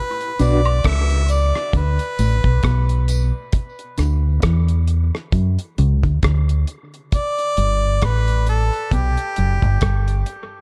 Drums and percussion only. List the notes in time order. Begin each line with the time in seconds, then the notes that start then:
0.21 closed hi-hat
0.39 closed hi-hat, tambourine
0.65 closed hi-hat, high woodblock
0.84 kick, cross-stick, closed hi-hat
1.10 closed hi-hat
1.29 closed hi-hat, tambourine
1.55 cross-stick
1.73 kick, closed hi-hat
1.99 closed hi-hat
2.19 closed hi-hat, tambourine
2.44 kick
2.63 kick, cross-stick, closed hi-hat
2.89 closed hi-hat
3.08 closed hi-hat, tambourine
3.52 kick, closed hi-hat
3.79 closed hi-hat
3.98 cross-stick, closed hi-hat, tambourine
4.42 kick, cross-stick, closed hi-hat
4.68 closed hi-hat
4.88 closed hi-hat
5.15 cross-stick
5.32 kick, closed hi-hat
5.59 closed hi-hat
5.78 closed hi-hat
6.03 kick, closed hi-hat
6.23 kick, cross-stick, closed hi-hat
6.49 closed hi-hat
6.67 closed hi-hat
6.94 closed hi-hat
7.12 kick, closed hi-hat
7.39 closed hi-hat
7.57 closed hi-hat
8.02 kick, cross-stick, closed hi-hat
8.28 closed hi-hat
8.47 closed hi-hat
8.73 closed hi-hat
8.91 kick, closed hi-hat
9.17 closed hi-hat
9.36 closed hi-hat
9.62 kick, closed hi-hat
9.81 kick, cross-stick, closed hi-hat
10.08 closed hi-hat
10.26 closed hi-hat